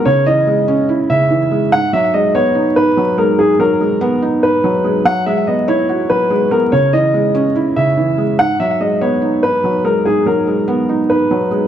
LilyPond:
<<
  \new Staff \with { instrumentName = "Grand piano" } { \time 4/4 \key gis \minor \tempo 4 = 144 cis''8 dis''4. r8 e''4. | fis''8 e''8 dis''8 cis''4 b'4 ais'8 | gis'8 ais'4. r8 b'4. | fis''8 e''8 dis''8 cis''4 b'4 ais'8 |
cis''8 dis''4. r8 e''4. | fis''8 e''8 dis''8 cis''4 b'4 ais'8 | gis'8 ais'4. r8 b'4. | }
  \new Staff \with { instrumentName = "Felt piano" } { \clef bass \time 4/4 \key gis \minor cis8 e8 gis8 cis'8 e'8 cis8 e8 gis8 | gis,8 fis8 gis8 b8 dis'8 gis,8 fis8 gis8 | gis,8 fis8 gis8 b8 dis'8 gis,8 fis8 gis8 | fis8 gis8 b8 e'8 fis'8 fis8 gis8 b8 |
cis8 e8 gis8 cis'8 e'8 cis8 e8 gis8 | gis,8 fis8 gis8 b8 dis'8 gis,8 fis8 gis8 | gis,8 fis8 gis8 b8 dis'8 gis,8 fis8 gis8 | }
>>